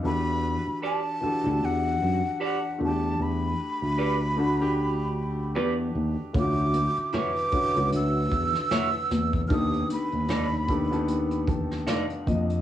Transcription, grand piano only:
0, 0, Header, 1, 2, 480
1, 0, Start_track
1, 0, Key_signature, 2, "major"
1, 0, Tempo, 788436
1, 26, Time_signature, 4, 2, 24, 8
1, 7680, End_track
2, 0, Start_track
2, 0, Title_t, "Grand piano"
2, 0, Program_c, 0, 0
2, 0, Control_c, 0, 64, 127
2, 15, Note_on_c, 0, 52, 62
2, 19, Note_on_c, 0, 62, 60
2, 25, Note_on_c, 0, 66, 63
2, 28, Note_on_c, 0, 67, 58
2, 30, Note_on_c, 0, 69, 71
2, 35, Control_c, 0, 64, 0
2, 131, Control_c, 0, 64, 127
2, 619, Note_off_c, 0, 52, 0
2, 621, Note_off_c, 0, 62, 0
2, 623, Note_off_c, 0, 66, 0
2, 625, Note_off_c, 0, 67, 0
2, 626, Note_off_c, 0, 69, 0
2, 734, Note_on_c, 0, 52, 68
2, 739, Note_on_c, 0, 62, 59
2, 741, Note_on_c, 0, 66, 59
2, 747, Note_on_c, 0, 67, 57
2, 751, Note_on_c, 0, 69, 72
2, 853, Note_off_c, 0, 52, 0
2, 855, Note_off_c, 0, 62, 0
2, 856, Note_off_c, 0, 66, 0
2, 859, Note_off_c, 0, 67, 0
2, 861, Note_off_c, 0, 69, 0
2, 873, Note_on_c, 0, 52, 63
2, 876, Note_on_c, 0, 62, 66
2, 879, Note_on_c, 0, 66, 61
2, 885, Note_on_c, 0, 67, 60
2, 888, Note_on_c, 0, 69, 70
2, 1646, Note_off_c, 0, 52, 0
2, 1647, Note_off_c, 0, 62, 0
2, 1649, Note_off_c, 0, 66, 0
2, 1652, Note_off_c, 0, 67, 0
2, 1653, Note_off_c, 0, 69, 0
2, 1695, Note_on_c, 0, 57, 72
2, 1702, Note_on_c, 0, 62, 62
2, 1712, Note_on_c, 0, 66, 56
2, 1715, Control_c, 0, 64, 0
2, 1750, Note_on_c, 0, 67, 73
2, 1755, Note_off_c, 0, 66, 0
2, 1825, Control_c, 0, 64, 127
2, 2485, Note_off_c, 0, 57, 0
2, 2488, Note_off_c, 0, 62, 0
2, 2512, Note_off_c, 0, 67, 0
2, 2656, Note_on_c, 0, 57, 79
2, 2664, Note_on_c, 0, 62, 68
2, 2670, Note_on_c, 0, 66, 81
2, 2774, Note_off_c, 0, 57, 0
2, 2778, Note_off_c, 0, 62, 0
2, 2781, Note_off_c, 0, 66, 0
2, 2795, Note_on_c, 0, 57, 75
2, 2802, Note_on_c, 0, 62, 69
2, 2811, Note_on_c, 0, 67, 95
2, 3567, Note_off_c, 0, 57, 0
2, 3570, Note_off_c, 0, 62, 0
2, 3574, Note_off_c, 0, 67, 0
2, 3856, Note_on_c, 0, 50, 61
2, 3861, Note_on_c, 0, 61, 61
2, 3866, Note_on_c, 0, 64, 53
2, 3872, Note_on_c, 0, 65, 61
2, 3875, Control_c, 0, 64, 0
2, 3911, Note_on_c, 0, 66, 68
2, 3915, Note_off_c, 0, 65, 0
2, 3966, Control_c, 0, 64, 127
2, 4459, Note_off_c, 0, 50, 0
2, 4461, Note_off_c, 0, 61, 0
2, 4463, Note_off_c, 0, 64, 0
2, 4486, Note_off_c, 0, 66, 0
2, 4576, Note_on_c, 0, 50, 67
2, 4581, Note_on_c, 0, 61, 61
2, 4586, Note_on_c, 0, 64, 58
2, 4591, Note_on_c, 0, 66, 66
2, 4693, Note_off_c, 0, 50, 0
2, 4696, Note_off_c, 0, 61, 0
2, 4699, Note_off_c, 0, 64, 0
2, 4701, Note_off_c, 0, 66, 0
2, 4714, Note_on_c, 0, 50, 66
2, 4719, Note_on_c, 0, 61, 62
2, 4724, Note_on_c, 0, 64, 64
2, 4730, Note_on_c, 0, 66, 75
2, 5486, Note_off_c, 0, 50, 0
2, 5489, Note_off_c, 0, 61, 0
2, 5491, Note_off_c, 0, 64, 0
2, 5494, Note_off_c, 0, 66, 0
2, 5776, Note_on_c, 0, 51, 67
2, 5779, Note_on_c, 0, 59, 64
2, 5784, Note_on_c, 0, 62, 61
2, 5788, Note_on_c, 0, 67, 59
2, 5792, Note_on_c, 0, 69, 76
2, 5794, Control_c, 0, 64, 0
2, 5896, Control_c, 0, 64, 127
2, 6379, Note_off_c, 0, 51, 0
2, 6381, Note_off_c, 0, 59, 0
2, 6383, Note_off_c, 0, 62, 0
2, 6385, Note_off_c, 0, 67, 0
2, 6387, Note_off_c, 0, 69, 0
2, 6500, Note_on_c, 0, 51, 67
2, 6503, Note_on_c, 0, 59, 60
2, 6506, Note_on_c, 0, 62, 60
2, 6512, Note_on_c, 0, 67, 64
2, 6514, Note_on_c, 0, 69, 80
2, 6616, Note_off_c, 0, 51, 0
2, 6617, Note_off_c, 0, 59, 0
2, 6619, Note_off_c, 0, 62, 0
2, 6622, Note_off_c, 0, 67, 0
2, 6623, Note_off_c, 0, 69, 0
2, 6640, Note_on_c, 0, 51, 77
2, 6644, Note_on_c, 0, 59, 77
2, 6650, Note_on_c, 0, 62, 75
2, 6652, Note_on_c, 0, 67, 70
2, 6656, Note_on_c, 0, 69, 86
2, 6988, Note_on_c, 0, 81, 62
2, 7211, Note_off_c, 0, 81, 0
2, 7229, Note_on_c, 0, 77, 62
2, 7410, Note_off_c, 0, 51, 0
2, 7412, Note_off_c, 0, 59, 0
2, 7415, Note_off_c, 0, 62, 0
2, 7416, Note_off_c, 0, 67, 0
2, 7418, Note_off_c, 0, 69, 0
2, 7452, Note_off_c, 0, 77, 0
2, 7472, Note_on_c, 0, 75, 70
2, 7680, Note_off_c, 0, 75, 0
2, 7680, End_track
0, 0, End_of_file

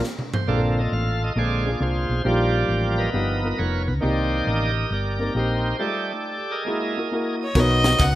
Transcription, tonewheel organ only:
0, 0, Header, 1, 2, 480
1, 0, Start_track
1, 0, Key_signature, -2, "major"
1, 0, Tempo, 441826
1, 526, Time_signature, 4, 2, 24, 8
1, 8856, End_track
2, 0, Start_track
2, 0, Title_t, "Tonewheel organ"
2, 0, Program_c, 0, 16
2, 370, Note_on_c, 0, 72, 93
2, 516, Note_on_c, 0, 50, 46
2, 520, Note_on_c, 0, 58, 43
2, 529, Note_on_c, 0, 65, 51
2, 529, Note_on_c, 0, 69, 57
2, 529, Note_on_c, 0, 74, 75
2, 533, Note_on_c, 0, 60, 47
2, 535, Note_off_c, 0, 72, 0
2, 670, Note_off_c, 0, 74, 0
2, 853, Note_on_c, 0, 75, 71
2, 883, Note_off_c, 0, 50, 0
2, 885, Note_off_c, 0, 58, 0
2, 892, Note_off_c, 0, 60, 0
2, 1014, Note_on_c, 0, 77, 78
2, 1016, Note_off_c, 0, 75, 0
2, 1335, Note_off_c, 0, 77, 0
2, 1347, Note_on_c, 0, 75, 81
2, 1443, Note_off_c, 0, 65, 0
2, 1443, Note_off_c, 0, 69, 0
2, 1488, Note_on_c, 0, 50, 46
2, 1497, Note_on_c, 0, 56, 40
2, 1503, Note_off_c, 0, 75, 0
2, 1503, Note_on_c, 0, 65, 57
2, 1504, Note_on_c, 0, 74, 83
2, 1507, Note_on_c, 0, 68, 58
2, 1512, Note_on_c, 0, 60, 52
2, 1849, Note_off_c, 0, 50, 0
2, 1854, Note_off_c, 0, 56, 0
2, 1862, Note_off_c, 0, 60, 0
2, 1958, Note_off_c, 0, 68, 0
2, 1962, Note_off_c, 0, 65, 0
2, 1971, Note_on_c, 0, 68, 55
2, 1975, Note_on_c, 0, 65, 50
2, 1984, Note_on_c, 0, 72, 82
2, 1989, Note_off_c, 0, 74, 0
2, 2415, Note_off_c, 0, 68, 0
2, 2417, Note_off_c, 0, 65, 0
2, 2443, Note_on_c, 0, 53, 45
2, 2451, Note_on_c, 0, 55, 40
2, 2454, Note_on_c, 0, 58, 52
2, 2456, Note_on_c, 0, 67, 55
2, 2462, Note_on_c, 0, 65, 55
2, 2469, Note_off_c, 0, 72, 0
2, 2482, Note_on_c, 0, 74, 77
2, 3238, Note_on_c, 0, 70, 67
2, 3238, Note_on_c, 0, 71, 63
2, 3259, Note_on_c, 0, 75, 102
2, 3284, Note_off_c, 0, 74, 0
2, 3362, Note_off_c, 0, 53, 0
2, 3366, Note_off_c, 0, 55, 0
2, 3368, Note_off_c, 0, 58, 0
2, 3369, Note_off_c, 0, 67, 0
2, 3372, Note_off_c, 0, 65, 0
2, 3416, Note_on_c, 0, 59, 44
2, 3418, Note_on_c, 0, 53, 44
2, 3432, Note_on_c, 0, 63, 51
2, 3775, Note_off_c, 0, 59, 0
2, 3776, Note_off_c, 0, 53, 0
2, 3783, Note_off_c, 0, 63, 0
2, 3897, Note_on_c, 0, 73, 78
2, 3915, Note_off_c, 0, 75, 0
2, 4158, Note_off_c, 0, 70, 0
2, 4158, Note_off_c, 0, 71, 0
2, 4211, Note_on_c, 0, 71, 68
2, 4218, Note_off_c, 0, 73, 0
2, 4283, Note_off_c, 0, 71, 0
2, 4351, Note_on_c, 0, 51, 43
2, 4358, Note_on_c, 0, 58, 37
2, 4365, Note_on_c, 0, 67, 52
2, 4369, Note_on_c, 0, 63, 54
2, 4372, Note_on_c, 0, 74, 55
2, 4382, Note_on_c, 0, 72, 75
2, 4844, Note_off_c, 0, 67, 0
2, 4857, Note_on_c, 0, 67, 49
2, 4861, Note_on_c, 0, 70, 53
2, 4870, Note_off_c, 0, 72, 0
2, 4876, Note_on_c, 0, 75, 78
2, 5117, Note_off_c, 0, 51, 0
2, 5120, Note_off_c, 0, 58, 0
2, 5127, Note_off_c, 0, 74, 0
2, 5287, Note_off_c, 0, 63, 0
2, 5332, Note_off_c, 0, 67, 0
2, 5334, Note_off_c, 0, 70, 0
2, 5345, Note_on_c, 0, 67, 51
2, 5347, Note_on_c, 0, 70, 57
2, 5358, Note_off_c, 0, 75, 0
2, 5366, Note_on_c, 0, 74, 76
2, 5796, Note_off_c, 0, 74, 0
2, 5823, Note_off_c, 0, 67, 0
2, 5836, Note_on_c, 0, 67, 53
2, 5837, Note_on_c, 0, 63, 51
2, 5857, Note_on_c, 0, 72, 69
2, 6256, Note_off_c, 0, 70, 0
2, 6271, Note_off_c, 0, 63, 0
2, 6271, Note_off_c, 0, 67, 0
2, 6292, Note_on_c, 0, 55, 41
2, 6295, Note_on_c, 0, 57, 40
2, 6303, Note_on_c, 0, 67, 48
2, 6307, Note_on_c, 0, 69, 50
2, 6311, Note_on_c, 0, 63, 50
2, 6324, Note_on_c, 0, 74, 72
2, 6328, Note_off_c, 0, 72, 0
2, 6654, Note_off_c, 0, 55, 0
2, 6656, Note_off_c, 0, 57, 0
2, 6664, Note_off_c, 0, 63, 0
2, 7072, Note_on_c, 0, 68, 57
2, 7080, Note_on_c, 0, 70, 59
2, 7086, Note_on_c, 0, 75, 94
2, 7126, Note_off_c, 0, 74, 0
2, 7213, Note_off_c, 0, 67, 0
2, 7215, Note_off_c, 0, 69, 0
2, 7222, Note_on_c, 0, 56, 46
2, 7228, Note_on_c, 0, 58, 39
2, 7246, Note_on_c, 0, 64, 53
2, 7597, Note_off_c, 0, 56, 0
2, 7601, Note_off_c, 0, 58, 0
2, 7610, Note_off_c, 0, 64, 0
2, 7994, Note_off_c, 0, 68, 0
2, 7998, Note_off_c, 0, 70, 0
2, 8037, Note_off_c, 0, 75, 0
2, 8050, Note_on_c, 0, 75, 62
2, 8200, Note_off_c, 0, 75, 0
2, 8856, End_track
0, 0, End_of_file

